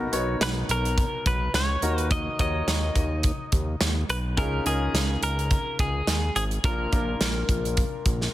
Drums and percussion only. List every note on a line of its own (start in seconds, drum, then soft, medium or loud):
0.13 closed hi-hat medium
0.41 snare loud
0.41 closed hi-hat medium
0.69 closed hi-hat medium
0.85 closed hi-hat soft
0.98 kick medium
0.98 closed hi-hat medium
1.26 kick medium
1.26 closed hi-hat medium
1.54 snare loud
1.54 closed hi-hat medium
1.82 closed hi-hat medium
1.98 closed hi-hat soft
2.11 kick medium
2.11 closed hi-hat medium
2.39 kick medium
2.39 closed hi-hat medium
2.68 snare medium
2.68 closed hi-hat medium
2.96 kick medium
2.96 closed hi-hat medium
3.23 kick medium
3.23 closed hi-hat medium
3.52 kick medium
3.52 closed hi-hat medium
3.81 snare loud
3.81 closed hi-hat medium
4.10 closed hi-hat medium
4.37 kick medium
4.37 closed hi-hat medium
4.66 closed hi-hat medium
4.95 snare medium
4.95 closed hi-hat medium
5.23 closed hi-hat medium
5.39 closed hi-hat soft
5.51 kick medium
5.51 closed hi-hat medium
5.79 kick medium
5.79 closed hi-hat medium
6.07 snare loud
6.07 closed hi-hat medium
6.36 closed hi-hat medium
6.51 closed hi-hat soft
6.64 kick medium
6.64 closed hi-hat medium
6.92 kick medium
6.92 closed hi-hat medium
7.21 snare medium
7.21 closed hi-hat medium
7.49 kick medium
7.49 closed hi-hat medium
7.65 closed hi-hat soft
7.77 kick medium
7.77 closed hi-hat medium
8.06 kick medium
8.06 closed hi-hat medium
8.21 snare soft